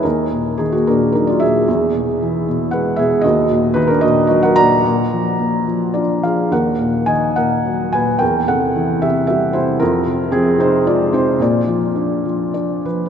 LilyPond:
<<
  \new Staff \with { instrumentName = "Felt piano" } { \time 3/4 \key ees \minor \tempo 4 = 110 <ees' bes'>4 <ees' aes'>16 <bes ges'>16 <d' bes'>8 <ees' bes'>16 <f' d''>16 <aes' fes''>8~ | <aes' fes''>2 <b' ges''>8 <gis' e''>8 | <ges' ees''>4 <ees' ces''>16 <d' bes'>16 <ges' ees''>8 <ges' ees''>16 <bes' ges''>16 <d'' bes''>8~ | <d'' bes''>2 <f' d''>8 <aes' f''>8 |
<bes' ges''>4 <ees'' aes''>8 <bes' ges''>4 <ces'' aes''>8 | <bes' g''>8 <a' ges''>4 <g' e''>8 <g' e''>8 <e' c''>8 | <f' bes'>4 <c' aes'>8 <ees' c''>8 <f' d''>8 <ees' c''>8 | <f' d''>2 d''8 ces''16. ces''32 | }
  \new Staff \with { instrumentName = "Felt piano" } { \clef bass \time 3/4 \key ees \minor ees,8 bes,8 ees8 bes,8 ges8 bes,8 | e,8 b,8 e8 b,8 gis8 b,8 | ees,8 bes,8 ees8 bes,8 ges8 bes,8 | bes,8 f8 bes8 f8 d'8 f8 |
ees,8 bes,8 ees8 bes,8 ges8 bes,8 | e,8 c8 e8 c8 g8 c8 | f,8 c8 f8 c8 aes8 c8 | bes,8 f8 d'8 f8 d'8 f8 | }
>>